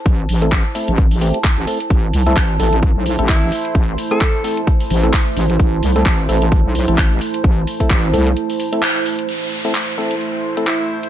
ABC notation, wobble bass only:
X:1
M:4/4
L:1/16
Q:"Swing 16ths" 1/4=130
K:Am
V:1 name="Wobble bass" clef=bass
A,,,2 A,,,3 z2 A,,,4 z2 A,,, z2 | A,,,2 C,,2 A,,,2 A,,,3 B,,,2 A,,,3 z2 | A,,,2 z8 A,,,2 z2 A,,,2 | A,,,2 C,,2 A,,,2 A,,,3 B,,,2 A,,,3 z2 |
A,,,2 z2 A,,,2 C,,2 z8 | z16 |]